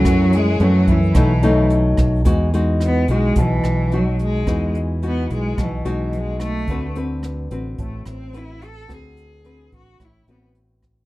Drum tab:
HH |xxxxxxxx|xxxxxxxx|xxxxxxxx|xxxxxxxx|
SD |r---r--r|--r--r--|r---r--r|--r--r--|
BD |o--oo--o|o---o---|o---o---|o---o---|

HH |xxxxxxxx|
SD |r---r--r|
BD |o--oo--o|